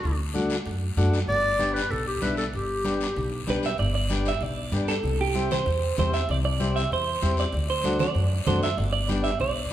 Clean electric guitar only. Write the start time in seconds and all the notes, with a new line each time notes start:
3.50 B4
3.66 E5
3.79 D5
3.95 D5
4.28 E5
4.43 D5
4.88 A4
5.21 G4
5.52 C5
5.99 C5
6.14 E5
6.31 D5
6.45 D5
6.76 E5
6.93 C5
7.40 D5
7.70 C5
8.00 D5
8.47 C5
8.63 E5
8.78 D5
8.93 D5
9.24 E5
9.41 D5